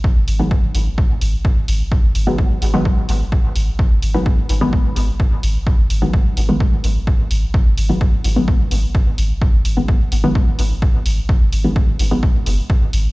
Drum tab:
HH |-o-o-o-o|-o-o-o-o|-o-o-o-o|-o-o-o-o|
BD |o-o-o-o-|o-o-o-o-|o-o-o-o-|o-o-o-o-|

HH |-o-o-o-o|-o-o-o-o|-o-o-o-o|
BD |o-o-o-o-|o-o-o-o-|o-o-o-o-|